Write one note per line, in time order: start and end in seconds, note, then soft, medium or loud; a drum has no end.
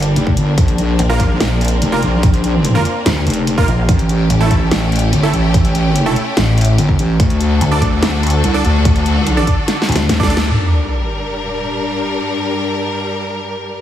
0.00 0.15 G1 loud
0.00 0.54 G3 medium
0.00 3.85 A#3 medium
0.00 3.85 D4 medium
0.00 closed hi-hat medium
0.16 0.35 F1 loud
0.16 closed hi-hat medium
0.27 kick medium
0.37 0.56 G1 loud
0.37 closed hi-hat medium
0.58 0.97 A#1 loud
0.58 3.85 C4 medium
0.58 kick loud
0.58 closed hi-hat medium
0.68 closed hi-hat soft
0.78 closed hi-hat medium
0.99 1.18 A#1 loud
0.99 closed hi-hat medium
1.10 1.21 A#3 loud
1.10 1.21 F4 medium
1.10 1.21 A#4 loud
1.20 1.39 A#1 medium
1.20 kick medium
1.20 closed hi-hat medium
1.40 1.80 A#1 loud
1.40 snare loud
1.40 closed hi-hat medium
1.61 closed hi-hat medium
1.65 closed hi-hat medium
1.68 closed hi-hat medium
1.82 2.01 F1 loud
1.82 closed hi-hat medium
1.92 1.99 A#3 medium
1.92 1.99 F4 medium
1.92 1.99 A#4 loud
2.02 2.84 A#1 loud
2.02 closed hi-hat medium
2.23 kick loud
2.23 closed hi-hat medium
2.34 closed hi-hat soft
2.44 closed hi-hat medium
2.65 closed hi-hat medium
2.75 2.82 A#3 medium
2.75 2.82 F4 medium
2.75 2.82 A#4 loud
2.85 closed hi-hat medium
3.06 3.25 D2 loud
3.06 snare loud
3.06 closed hi-hat medium
3.27 3.66 F1 loud
3.27 closed hi-hat soft
3.30 closed hi-hat medium
3.34 closed hi-hat medium
3.47 closed hi-hat medium
3.58 3.66 A#3 medium
3.58 3.66 F4 medium
3.58 3.66 A#4 loud
3.58 kick medium
3.68 3.87 A#1 loud
3.68 closed hi-hat soft
3.89 4.28 A1 loud
3.89 7.16 A3 medium
3.89 7.16 C#4 medium
3.89 7.16 G4 medium
3.89 kick loud
3.89 closed hi-hat medium
3.99 closed hi-hat soft
4.09 closed hi-hat medium
4.30 4.49 A1 loud
4.30 closed hi-hat medium
4.41 4.52 A3 loud
4.41 4.52 E4 medium
4.41 4.52 A4 loud
4.51 4.70 A1 loud
4.51 kick medium
4.51 closed hi-hat medium
4.71 5.11 A1 loud
4.71 snare loud
4.71 closed hi-hat medium
4.92 closed hi-hat soft
4.96 closed hi-hat medium
4.99 closed hi-hat medium
5.13 5.32 G1 loud
5.13 closed hi-hat medium
5.23 5.30 A3 loud
5.23 5.30 E4 medium
5.23 5.30 A4 loud
5.34 6.15 A1 loud
5.34 closed hi-hat soft
5.54 kick loud
5.54 closed hi-hat medium
5.65 closed hi-hat soft
5.75 closed hi-hat medium
5.96 closed hi-hat medium
6.06 6.13 A3 medium
6.06 6.13 E4 medium
6.06 6.13 A4 loud
6.16 closed hi-hat medium
6.37 6.77 A1 loud
6.37 snare loud
6.37 closed hi-hat medium
6.58 closed hi-hat soft
6.61 closed hi-hat medium
6.65 closed hi-hat medium
6.78 6.97 G1 loud
6.78 closed hi-hat medium
6.89 kick medium
6.99 7.18 A1 loud
6.99 closed hi-hat soft
7.20 7.59 D2 loud
7.20 10.47 D3 medium
7.20 10.47 D4 medium
7.20 10.47 F#4 medium
7.20 10.47 A4 medium
7.20 kick loud
7.20 closed hi-hat medium
7.30 closed hi-hat soft
7.40 closed hi-hat medium
7.61 7.80 D2 medium
7.61 closed hi-hat medium
7.72 7.83 D4 loud
7.72 7.83 A4 medium
7.72 7.83 D5 loud
7.82 8.01 D2 medium
7.82 kick medium
7.82 closed hi-hat medium
8.02 8.42 D2 loud
8.02 snare loud
8.02 closed hi-hat medium
8.23 closed hi-hat soft
8.27 closed hi-hat medium
8.30 closed hi-hat medium
8.44 8.63 C2 loud
8.44 closed hi-hat medium
8.54 8.61 D4 loud
8.54 8.61 A4 medium
8.54 8.61 D5 loud
8.65 9.46 D2 loud
8.65 closed hi-hat soft
8.85 kick loud
8.85 closed hi-hat medium
8.96 closed hi-hat soft
9.06 closed hi-hat medium
9.27 closed hi-hat medium
9.37 9.44 D4 medium
9.37 9.44 A4 medium
9.37 9.44 D5 loud
9.47 kick medium
9.47 closed hi-hat medium
9.68 snare medium
9.68 closed hi-hat medium
9.82 snare medium
9.89 10.08 D2 loud
9.89 closed hi-hat soft
9.92 snare medium
9.92 closed hi-hat medium
9.96 closed hi-hat medium
10.09 10.49 D2 loud
10.09 snare medium
10.09 closed hi-hat medium
10.20 10.29 D4 medium
10.20 10.29 A4 medium
10.20 10.29 D5 loud
10.20 kick medium
10.20 snare loud
10.30 10.37 D4 medium
10.30 10.37 A4 medium
10.30 10.37 D5 loud
10.30 closed hi-hat medium
10.37 snare loud
10.51 13.78 G2 medium
10.51 13.79 G3 medium
10.51 13.78 D4 medium
10.51 13.79 A#4 medium
10.51 sub drop medium